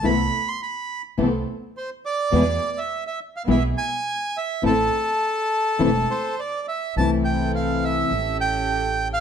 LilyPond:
<<
  \new Staff \with { instrumentName = "Bandoneon" } { \time 4/4 \key a \minor \tempo 4 = 104 b''8. c'''16 b''8. r4 r16 c''8 d''8~ | d''8. e''8 e''8 f''16 e''8 gis''4 e''8 | a'2~ a'8 c''8 d''8 e''8 | \key c \major a''8 g''8 f''8 e''4 g''4~ g''16 f''16 | }
  \new Staff \with { instrumentName = "String section" } { \time 4/4 \key a \minor <b c' a'>8 r4. <b c' a'>8 r4. | <b e' gis'>8 r4. <b e' gis'>8 r4. | <c' e' a'>8 r4. <c' e' a'>8 r4. | \key c \major <c' e' a'>2 <cis' g' a'>2 | }
  \new Staff \with { instrumentName = "Nylon-string guitar" } { \time 4/4 \key a \minor <c e a b e'>8 r4. <c e a b e'>8 r4. | <b, e gis b e'>8 r4. <b, e gis b e'>8 r4. | <e a c' e'>8 r4. <e a c' e'>8 r4. | \key c \major <c e a c' e'>2 r2 | }
  \new Staff \with { instrumentName = "Upright bass" } { \clef bass \time 4/4 \key a \minor c,8 r4. c,8 r4. | e,8 r4. b,,8 r4. | a,,8 r4. e,,8 r4. | \key c \major c,2 a,,2 | }
>>